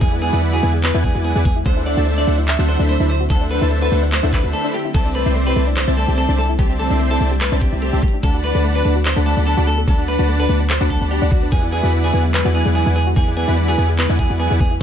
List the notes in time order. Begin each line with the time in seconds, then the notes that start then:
Already playing: D3 F#3 G#3 B3 E4
0.01 E2 B3 E4 G#4 B4 D5 F#5 G#5, kick, closed hi-hat
0.12 G#4
0.22 B3 G#4, closed hi-hat
0.33 E2 E4 B4 D5 F#5 B5
0.42 B3, closed hi-hat
0.53 F#4 G#4
0.63 E2 B3 E4 B4 D5 F#5 G#5, closed hi-hat
0.74 G#4
0.83 B3 B4, clap, closed hi-hat
0.94 E2 E4 B4 D5 F#5 G#5
1.04 B3 G#4, kick, closed hi-hat
1.15 E2 E4 F#4 B4 D5 F#5 G#5
1.25 B3 G#4, closed hi-hat
1.35 E2 E4 G#4 B4 D5 F#5 G#5
1.45 B3 G#4, kick, closed hi-hat
1.51 closed hi-hat
1.56 E4
1.66 D2 D3 A3 C4 D4 E4 A4 C5 E5 F#5, kick, closed hi-hat
1.77 E4
1.86 A3 D5, closed hi-hat
1.97 D2 D4 F#4 A4 C5 E5 A5
2.07 A3, closed hi-hat
2.18 D4 D5
2.27 D2 A3 D4 A4 C5 E5 F#5, closed hi-hat
2.38 E4
2.48 A3 E5, clap, closed hi-hat
2.59 D2 D4 F#4 A4 C5 E5 F#5
2.68 A3 C5, closed hi-hat
2.79 D2 D4 A4 C5 E5 B5
2.89 A3 C5, closed hi-hat
3.00 D2 D4 E4 A4 C5 E5 B5
3.09 A3 C5, closed hi-hat
3.15 closed hi-hat
3.20 F#4
3.30 D2 A3 D4 A4 C5 E5 F#5, kick, closed hi-hat
3.41 D4
3.51 A3 B4, closed hi-hat
3.61 D2 D4 E4 A4 C5 E5 A5
3.71 A3, closed hi-hat
3.82 F#4 B4
3.92 D2 A3 D4 A4 C5 E5 F#5, closed hi-hat
4.03 D4
4.12 A3 C5, clap, closed hi-hat
4.23 D2 D4 E4 A4 C5 E5 F#5
4.33 A3 B4, kick, clap, closed hi-hat
4.44 D2 D4 F#4 A4 C5 E5 B5
4.53 A3 A4, closed hi-hat
4.64 D4 A4 C5 E5 B5
4.74 A3 G4, open hi-hat
4.79 closed hi-hat
4.85 E4
4.94 C2 G3 A3 C4 A4 C5 D5 E5 A5, kick, closed hi-hat, crash
5.05 D4
5.15 A3 B4, closed hi-hat
5.26 C2 C4 E4 C5 D5 E5 C6
5.36 A3, closed hi-hat
5.47 G4 B4
5.56 C2 A3 C4 C5 D5 E5 A5, closed hi-hat
5.67 D4
5.77 A3 C5, clap, closed hi-hat
5.88 C2 C4 E4 C5 D5 E5 A5
5.97 A3 A4, closed hi-hat
6.08 C2 C4 G4 C5 D5 E5 A5
6.18 A3 A4, closed hi-hat
6.29 C2 C4 D4 C5 D5 E5 A5
6.38 A3 A4, closed hi-hat
6.44 closed hi-hat
6.49 E4
6.59 C2 A3 C4 G4 C5 D5 E5 A5, kick, closed hi-hat
6.70 G4
6.79 A3 A4, closed hi-hat
6.90 C2 C4 D4 C5 D5 E5 C6
7.00 A3, closed hi-hat
7.11 E4 A4
7.20 C2 A3 C4 C5 D5 E5 A5, closed hi-hat
7.31 G4
7.41 A3 B4, clap, closed hi-hat
7.52 C2 C4 D4 C5 D5 E5 A5
7.62 A3 G4, kick, closed hi-hat
7.72 C2 C4 E4 C5 D5 E5 A5
7.82 A3 G4, closed hi-hat
7.93 C2 C4 G4 C5 D5 E5 A5
8.03 F#3 A3 B3 F#4 G4, kick, closed hi-hat
8.08 closed hi-hat
8.14 D4
8.23 D2 A3 D4 A4 D5 F#5 A5 B5, kick, closed hi-hat
8.34 F#4
8.44 A3 B4, closed hi-hat
8.55 D2 D4 A4 D5 F#5 A5 B5
8.64 A3, closed hi-hat
8.75 D4 B4
8.85 D2 A3 D4 D5 F#5 A5 B5, closed hi-hat
8.96 F#4
9.05 A3 C5, clap, closed hi-hat
9.16 D2 D4 A4 D5 F#5 A5 B5
9.26 A3 A4, closed hi-hat
9.37 D2 D4 D5 F#5 A5 B5
9.46 A3 A4, closed hi-hat
9.57 D2 D4 F#4 D5 F#5 A5 B5
9.67 A3 A4, closed hi-hat
9.73 closed hi-hat
9.78 A4
9.88 D2 A3 D4 A4 D5 F#5 A5 B5, kick, closed hi-hat
9.99 D4
10.08 A3 B4, closed hi-hat
10.19 D2 D4 F#4 D5 F#5 A5 B5
10.29 A3, closed hi-hat
10.40 A4 B4
10.49 D2 A3 D4 D5 F#5 A5 B5, closed hi-hat
10.60 D4
10.70 A3 C5, clap, closed hi-hat
10.81 D2 D4 F#4 D5 F#5 A5 B5
10.90 D2 A3 D4 A4 D5 F#5 A5 B5, kick, closed hi-hat
11.01 D2 D4 D5 F#5 A5 B5
11.11 D4 G4, closed hi-hat
11.22 D2 D4 D5 F#5 A5 B5
11.31 F#4, kick, closed hi-hat
11.37 closed hi-hat
11.42 B3
11.52 E2 D3 G#3 B3 E4 G#4 B4 D5 F#5 G#5, kick, closed hi-hat
11.63 E4
11.72 B3 G#4, closed hi-hat
11.83 E2 E4 F#4 B4 D5 F#5 B5
11.93 B3, closed hi-hat
12.04 G#4
12.13 E2 B3 E4 B4 D5 F#5 G#5, closed hi-hat
12.25 E4
12.34 B3 B4, clap, closed hi-hat
12.45 E2 E4 F#4 B4 D5 F#5 G#5
12.55 B3 G#4, closed hi-hat
12.66 E2 E4 G#4 B4 D5 F#5 G#5
12.75 B3 G#4, closed hi-hat
12.86 E2 E4 B4 D5 F#5 G#5
12.96 B3 G#4, closed hi-hat
13.01 closed hi-hat
13.07 F#4
13.16 E2 B3 E4 G#4 B4 D5 F#5 G#5, kick, closed hi-hat
13.27 G#4
13.37 B3 G#4, closed hi-hat
13.48 E2 E4 B4 D5 F#5 B5
13.57 B3, closed hi-hat
13.68 F#4 G#4
13.78 E2 B3 E4 B4 D5 F#5 G#5, closed hi-hat
13.89 G#4
13.98 B3 B4, clap, closed hi-hat
14.09 E2 E4 B4 D5 F#5 G#5
14.19 B3 G#4, kick, closed hi-hat
14.30 E2 E4 F#4 B4 D5 F#5 G#5
14.40 B3 G#4, closed hi-hat
14.51 E2 E4 G#4 B4 D5 F#5 G#5
14.60 B3 G#4, kick, closed hi-hat
14.66 closed hi-hat
14.71 E4